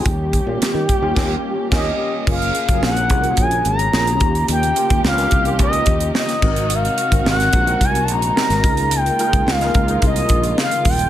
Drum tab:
CC |--------x---x---|x---------------|--------------x-|----------------|
HH |x-x-x-x---------|-xxx-xxxxxxx-xxx|xxxx-xxxxxxx-x-x|xxxx-xxxxxxx-xxx|
SD |----o---o---o---|----o-------o---|----oo------oo--|----oo------oo--|
BD |o-o---o-o---o---|o--o--o-o-----o-|---o--o-o-o---o-|---o--o-o-----o-|

CC |----------------|
HH |xxxx-xxxxxxx-xox|
SD |----oo------o---|
BD |---o--o-o-o---o-|